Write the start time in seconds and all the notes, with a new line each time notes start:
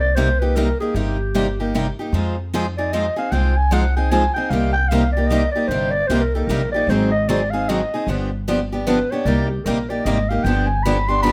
Already playing: C2
0.00 D5
0.15 C3 G3 A#3 D#4 G4 C5
0.40 A#3 D#4 G4 B4
0.56 C3 G3 A#3 D#4 G4 A#4
0.80 A#3 D#4 G4 G#4
0.94 G1 C3 G3 A#3 D#4 G4
1.34 C3 G3 A#3 D#4 G4
1.60 A#3 D#4 G4
1.74 C3 G3 A#3 D#4 G4
1.99 A#3 D#4 G4
2.12 F2 F3 G#3 C4 D#4 F4 G#4 C5
2.54 F3 G#3 C4 D#4 F4 G#4 C5
2.78 C4 D#4 G#4 D5
2.93 F3 G#3 C4 D#4 F4 G#4 C5 D#5
3.16 C4 D#4 G#4 F5
3.32 C2 F3 G#3 C4 D#4 F4 G#4 C5 G5
3.57 G#5
3.71 F3 G#3 C4 D#4 F4 G#4 C5 F#5
3.97 C4 D#4 G#4 G5
4.10 F3 G#3 C4 D#4 F4 G#4 C5 G#5
4.34 C4 D#4 G#4 G5
4.50 C2 C3 G3 A#3 D#4 G4 F5
4.73 G5
4.89 C3 G3 A#3 D#4 F5
4.93 G4
5.12 D5
5.17 A#3 D#4 G4
5.27 D#5
5.31 C3 G3 A#3 D#4 G4
5.52 G4 D5
5.56 A#3 D#4
5.68 G1 C3 G3 A#3 D#4 G4 C5
5.91 D5
6.07 C2 C3 G3 A#3 C5
6.11 D#4 G4
6.22 A#4
6.35 A#3 D#4 G4 A4
6.47 A#1 C3 G3 A#3 A#4
6.51 D#4 G4
6.72 G4 D5
6.76 A#3 D#4
6.87 G#1 D#3 F#3 D#4 C5
6.91 C4 G#4
7.11 D#5
7.29 D#3 F#3 C4 D#4 G#4 D5
7.51 C4 D#4 G#4 F5
7.69 D#3 F#3 C4 D#4 G#4 D#5
7.94 C4 D#4 G#4
8.07 G1 D3 F3 B3 D4 G4
8.48 D3 F3 B3 D4 G4
8.72 B3 D4 G4
8.87 D3 F3 B3 D4 G4 B4
9.11 B3 D4 G4 C#5
9.25 C2 C3 G3 A#3 D#4 G4 D5
9.49 G4
9.65 A#1 C3 G3 A#3 D#4 G4 A#4
9.90 A#3 D#4 G4 D5
10.05 G#1 C3 G3 A#3 D#4 G4 D#5
10.29 A#3 D#4 G4 F5
10.44 G1 D3 F3 B3 D4 G4 G5
10.67 G#5
10.83 D3 F3 B3 D4 G4 B5
11.08 B3 D4 G4 C6
11.23 D3 F3 B3 D4 G4 B5